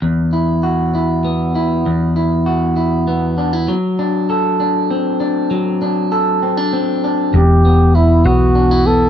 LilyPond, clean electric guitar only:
\new Staff \with { instrumentName = "Clean electric guitar" } { \time 6/8 \key d \mixolydian \tempo 4. = 66 e,8 e'8 fis'8 e'8 b8 e'8 | e,8 e'8 fis'8 e'8 b8 d'16 e'16 | fis8 d'8 a'8 d'8 c'8 d'8 | fis8 d'8 a'8 c'16 d'16 c'8 d'8 |
e,8 b8 e'8 b8 d'16 e'16 b8 | }